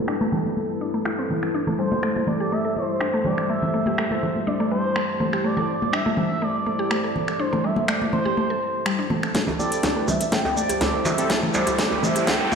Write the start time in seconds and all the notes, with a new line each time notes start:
Already playing: G3 E4 A4 B4
0.08 D4, finger snap
0.21 A3, high conga
0.32 G3, low conga
0.46 high conga
0.57 high conga
0.81 D4
0.94 A3
1.05 E4, finger snap
1.19 C4
1.30 high conga, low conga
1.43 finger snap
1.54 D4 C5
1.67 A3, low conga
1.79 G3 C5
1.92 high conga
2.03 A3, finger snap
2.16 high conga
2.27 A3 D5, low conga
2.40 G4
2.52 A3 E5
2.65 A4
2.76 C5, high conga
3.01 D4, finger snap
3.14 A3
3.25 G3 D5, high conga, low conga
3.38 finger snap
3.50 A3 E5
3.62 low conga
3.74 A3
3.86 G4, high conga
3.98 A3, finger snap
4.11 A4, high conga
4.23 low conga
4.36 high conga
4.47 D4 D5, high conga
4.60 A3
4.71 G3 C5
4.96 A3, finger snap
5.20 A3 C5, high conga, low conga
5.33 G4, finger snap
5.44 A3 C5 D5
5.57 A4, low conga
5.82 high conga
5.93 D4 E5, finger snap
6.06 A3, high conga
6.17 G3 E5, low conga
6.42 A3 D5
6.66 A3, high conga
6.79 G4
6.91 A3, finger snap
7.04 A4
7.16 high conga, low conga
7.28 finger snap
7.39 D4 C5
7.53 A3, low conga
7.64 G3 E5
7.76 high conga
7.88 A3 D5, finger snap
8.02 high conga
8.13 A3 C5, low conga
8.25 G4, high conga
8.37 A3, high conga
8.50 A4
8.86 G3, finger snap
8.99 D4
9.10 A3, high conga, low conga
9.23 finger snap
9.34 G3 A3 E4 A4 C5, kick, snare, closed hi-hat, riser, high conga, shekere
9.47 A4, djembe tone, low conga
9.59 C4 E4 G4 A4 D5, high conga, shekere
9.72 closed hi-hat, shekere
9.83 D4, kick, snare, closed hi-hat, djembe tone, shekere
9.96 A3 C4 E4 G4 B4
10.08 G3 E5, djembe tone, low conga, shekere
10.21 closed hi-hat, shekere
10.32 A3 G5, kick, snare, closed hi-hat, high conga, shekere
10.45 C4 E4 G4 A4, djembe tone
10.56 A3 D5, shekere
10.69 G4, closed hi-hat, djembe tone, shekere
10.81 A3 C4 E4 G4 A4, kick, snare, closed hi-hat, djembe bass, shekere
10.93 A4, mid tom
11.05 E5, djembe slap, djembe tone, low conga, shekere
11.18 C4 E4 G4 A4, closed hi-hat, shekere
11.29 D4, kick, snare, closed hi-hat, djembe tone, high conga, shekere
11.42 A3, low conga
11.54 G3 C4 E4 G4 A4 D5, djembe slap, high conga, shekere
11.67 closed hi-hat, djembe tone, shekere
11.78 A3, kick, snare, closed hi-hat, shekere
11.91 C4 E4 G4 B4, djembe tone
12.03 A3 E5, low conga, shekere
12.16 G4, closed hi-hat, shekere
12.27 A3 G5, kick, snare, closed hi-hat, mid tom, djembe tone, shekere
12.40 C4 E4 G4 A4
12.52 djembe slap, djembe tone, high conga, djembe bass